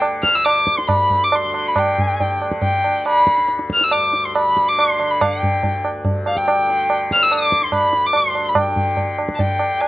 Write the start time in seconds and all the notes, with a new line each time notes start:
Already playing: D2 G2 D3
0.02 tabla na
0.23 F6, tabla ke
0.35 D2 E6
0.45 D6, tabla na
0.67 tabla ke
0.78 C6, tabla te
0.89 G2 B5, tabla na, tabla ge
1.10 tabla ge
1.24 D6
1.32 C6, tabla na
1.45 D3
1.54 tabla na
1.68 B5
1.76 G2 G5, tabla na, tabla ge
1.98 tabla ge
2.20 tabla tin, tabla ge
2.32 D3
2.42 tabla na
2.52 tabla ke
2.62 G5, tabla tin, tabla ge
2.84 D3, tabla na
3.06 B5, tabla na
3.27 tabla ke
3.38 D2, tabla te
3.48 tabla te
3.59 tabla te
3.70 F6, tabla ke
3.81 E6, tabla te
3.91 G2 D6, tabla na
4.13 tabla te
4.25 C6
4.35 B5, tabla na
4.47 D3
4.57 tabla ke
4.68 D6
4.79 C6, tabla na
4.99 D3, tabla na
5.07 B5 C6
5.21 F5, tabla na, tabla ge
5.40 G5, tabla ge
5.52 D2
5.63 tabla tin, tabla ge
5.85 tabla na
6.05 G2, tabla tin, tabla ge
6.26 F5, tabla na
6.37 G5, tabla ke
6.48 tabla na
6.58 D3
6.70 tabla te
6.90 tabla na
7.11 D3 F6, tabla ke
7.23 E6
7.31 D6, tabla na
7.52 tabla ke
7.62 D2 C6, tabla te
7.72 B5, tabla na, tabla ge
7.93 tabla te
8.06 D6
8.13 G2 C6, tabla na
8.35 tabla na
8.48 B5
8.55 G5, tabla na, tabla ge
8.67 D3
8.76 tabla ge
8.97 tabla tin, tabla ge
9.18 D3, tabla na
9.29 tabla ke
9.35 A5
9.39 G5, tabla tin, tabla ge
9.59 tabla na
9.71 D2
9.81 B5, tabla na